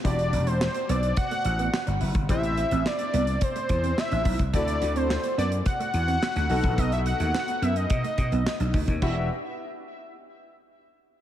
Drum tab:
CC |----------------|----------------|----------------|----------------|
HH |xxxx-xxxxxxx-xox|xxxx-xxxxxxx-xox|xxxx-xxxxxxx-xox|xxxx-xxxxxxx-xox|
CP |----x-------x---|----x-------x---|----x-------x---|----x-------x---|
SD |----o-------o---|----o-------o---|----o-------o---|----o-------o---|
BD |o-------o------o|o-------o-o---oo|o-------o------o|o-------o-o---oo|

CC |x---------------|
HH |----------------|
CP |----------------|
SD |----------------|
BD |o---------------|